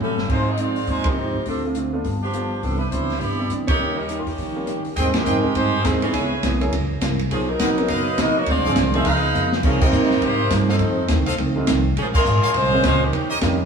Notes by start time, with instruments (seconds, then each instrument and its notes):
Already playing: upright bass A1
0.00 hollow-body jazz guitar A2 G3 C#4 F#4, saxophone section G3 C#4 E4 A4, floor tom
0.17 upright bass G1, snare
0.29 upright bass G#1, hollow-body jazz guitar G#2 F3 C4 D#4, saxophone section G#3 D#4 F4 C5, kick, crash
0.49 saxophone section C4 F4 G#4 D#5
0.57 hollow-body jazz guitar G#2 F3 C4 D#4, saxophone section C4 F4 G#4 D5, closed hi-hat
0.76 open hi-hat
0.87 upright bass D#2, hollow-body jazz guitar G#2 F3 C4 D#4, saxophone section G#3 D#4 F4 C5, kick, open hi-hat
1.04 saxophone section F3 C4 D#4 G4, upright piano A#3 C4 D#4 F4, kick, ride
1.16 hollow-body jazz guitar G#2 F3 C4 D#4
1.34 upright bass A2
1.46 upright bass D2, hollow-body jazz guitar D3 A3 C4 F4, saxophone section F3 C4 D4 A4, kick, open hi-hat
1.64 upright piano A3 C4 E4 F4
1.75 hollow-body jazz guitar D3 A3 C4 F4, closed hi-hat
1.93 upright piano A3 B3 D4 F4
2.04 upright bass G1, hollow-body jazz guitar G3 B3 F4 A4, kick, open hi-hat
2.23 saxophone section F3 B3 D4 G4
2.33 hollow-body jazz guitar G3 B3 F4 A4, closed hi-hat
2.62 upright bass C2, hollow-body jazz guitar C3 E3 B3 D4, saxophone section F3 B3 D4 A4, kick, open hi-hat
2.79 saxophone section G3 D4 E4 B4
2.90 upright bass C#2, hollow-body jazz guitar C3 E3 B3 D4, saxophone section G3 D4 E4 C5, closed hi-hat
3.10 snare, open hi-hat
3.19 upright bass G1, hollow-body jazz guitar C3 E3 B3 D4, saxophone section B3 E4 G4 D5, kick, open hi-hat
3.39 upright piano G3 B3 D4 E4
3.49 upright bass A#2, hollow-body jazz guitar C3 E3 B3 D4, closed hi-hat
3.67 saxophone section A#3 D#4 G4 C#5, kick, ride
3.79 upright bass D#2, hollow-body jazz guitar D#3 A#3 C#4 G4, upright piano G3 A#3 C#4 F4
3.97 saxophone section G3 C#4 D#4 A#4
4.09 hollow-body jazz guitar D#3 A#3 C#4 G4, closed hi-hat
4.19 saxophone section F4
4.25 upright bass E2, saxophone section D#3 A#3 C#4 G4, open hi-hat
4.38 upright bass A#1, hollow-body jazz guitar D#3 A#3 C#4 G4, kick, open hi-hat
4.55 upright piano G3 A#3 C#4 F4
4.67 hollow-body jazz guitar D#3 A#3 C#4 G4, closed hi-hat
4.85 muted upright bass stroke, open hi-hat
4.96 upright bass D#2, hollow-body jazz guitar G#2 G3 C4 D#4, saxophone section D#3 G3 C4 G#4, trumpet section G#4 C5 D#5 G5, kick, ride
5.14 saxophone section G#3 D#4 G4 A#4, snare, ride
5.25 upright bass F2, hollow-body jazz guitar G#2 G3 C4 D#4, trumpet section G#4 C5 D#5 G5, hi-hat pedal
5.43 upright piano G#3 A#3 C4 D#4 G4, muted upright bass stroke
5.55 upright bass G2, hollow-body jazz guitar G#2 G3 C4 D#4, saxophone section G#3 D#4 G4 C5, kick, ride
5.84 upright bass D#2, hollow-body jazz guitar G#2 G3 C4 D#4, saxophone section D#3 G3 C4 G#4, kick, snare, hi-hat pedal, ride
6.02 upright piano E3 B3 C#4 D#4 G#4, saxophone section E3 B3 C#4 G#4, ride
6.13 upright bass C#2, hollow-body jazz guitar C#3 G#3 B3 E4, trumpet section B4 C#5 E5 G#5, kick, ride
6.43 upright bass B1, hollow-body jazz guitar C#3 G#3 B3 E4, kick, snare, hi-hat pedal, ride
6.61 upright piano F#3 A#3 C#4 E4 G#4, ride
6.72 upright bass C#2, hollow-body jazz guitar F#2 E3 A#3 C#4, kick, ride
7.01 upright bass C2, hollow-body jazz guitar F#2 E3 A#3 C#4, kick, snare, hi-hat pedal, ride
7.19 ride
7.30 upright bass B1, hollow-body jazz guitar B2 F#3 A#3 D#4, saxophone section F3 A#3 C#4 G#4, kick, ride
7.49 saxophone section F#3 B3 D#4 A#4
7.59 upright bass A#1, hollow-body jazz guitar B2 F#3 A#3 D#4, trumpet section A#4 B4 D#5 F#5, kick, snare, hi-hat pedal, ride
7.77 upright piano F#3 B3 C#4 D#4 A#4, ride
7.88 upright bass F#1, hollow-body jazz guitar B2 F#3 A#3 D#4, saxophone section F#3 A#3 D#4 B4, trumpet section A#4 B4 D#5 F5, kick, ride
8.18 upright bass A#1, hollow-body jazz guitar B2 F#3 A#3 D#4, saxophone section B3 F#4 A#4 D#5, kick, snare, hi-hat pedal, ride
8.38 saxophone section A#3 D#4 F#4 C#5
8.46 upright bass D2, hollow-body jazz guitar D3 G#3 C4 F4, saxophone section C4 F4 G#4 D5, kick, ride
8.56 upright bass C2
8.65 upright bass G#1, upright piano F3 C4 D4 E4 G#4, trumpet section G#4 C5 D5 F5
8.76 upright bass C2, hollow-body jazz guitar D3 G#3 C4 F4, kick, snare, hi-hat pedal, ride
8.94 upright piano F3 A#3 B3 D#4 G#4, saxophone section C4 F4 G#4 E5, ride
9.05 upright bass C#2, hollow-body jazz guitar C#3 B3 F4 A#4, saxophone section D#4 G#4 B4 F5, trumpet section B4 D#5 F5 A#5, kick, ride
9.34 upright bass F2, hollow-body jazz guitar C#3 B3 F4 A#4, hi-hat pedal
9.52 snare
9.63 hollow-body jazz guitar C3 G3 A#3 D#4, upright bass C3, saxophone section F3 A#3 C#4 G#4, kick, crash
9.81 upright piano G3 A#3 C4 D#4 G4, saxophone section G3 C4 D#4 A#4, trumpet section A#4 C5 D#5 G5, kick, crash
9.92 upright bass A#2, hollow-body jazz guitar C3 G3 A#3 D#4, hi-hat pedal
10.11 snare
10.21 upright bass G#2, hollow-body jazz guitar C3 G3 A#3 D#4, saxophone section A#3 D#4 G4 C5, kick, ride
10.50 upright bass G2, hollow-body jazz guitar C3 G3 A#3 D#4, saxophone section F3 A#3 C#4 G4 G#4, kick, snare, hi-hat pedal, ride
10.69 saxophone section F3 C4 D#4 A4, trumpet section A4 C5 D#5 F5, snare
10.79 upright bass F2, hollow-body jazz guitar F2 D#3 A3 C4, kick, ride
11.08 upright bass D#2, hollow-body jazz guitar F2 D#3 A3 C4, kick, snare, hi-hat pedal, ride
11.19 upright bass C2
11.26 upright bass A1, trumpet section A4 C5 D#5 F5, ride
11.38 upright bass C#2, hollow-body jazz guitar F2 D#3 A3 C4, kick, ride
11.56 upright piano G3 A3 C4 D#4 F4
11.67 upright bass C2, hollow-body jazz guitar F2 D#3 A3 C4, kick, snare, hi-hat pedal, ride
11.97 upright bass A#1, hollow-body jazz guitar A#2 F3 G#3 C#4, saxophone section F3 A#3 C#4 G#4, kick, ride
12.14 saxophone section G#3 C#4 F4 A#4, trumpet section G#4 A#4 C#5 F5, kick, crash
12.25 upright bass G#1, hollow-body jazz guitar A#2 F3 G#3 C#4, hi-hat pedal
12.43 trumpet section G#4 A#4 C#5 F5, ride
12.54 upright bass C2, hollow-body jazz guitar A#2 F3 G#3 C#4, saxophone section G#3 C#4 F4 C5, kick, ride
12.73 upright piano G#3 A#3 C4 C#4 F4
12.83 upright bass C#2, hollow-body jazz guitar A#2 F3 G#3 C#4, saxophone section G#3 C#4 F4 B4 C5, kick, snare, hi-hat pedal, ride
13.03 saxophone section D#3 A#3 C#4 G4
13.13 upright bass D#2, hollow-body jazz guitar D#3 A#3 C#4 G4, kick, ride
13.30 trumpet section G4 A#4 C#5 D#5
13.41 upright bass F2, hollow-body jazz guitar D#3 A#3 C#4 G4, upright piano G3 A#3 C#4 D#4 F4, kick, snare, hi-hat pedal, ride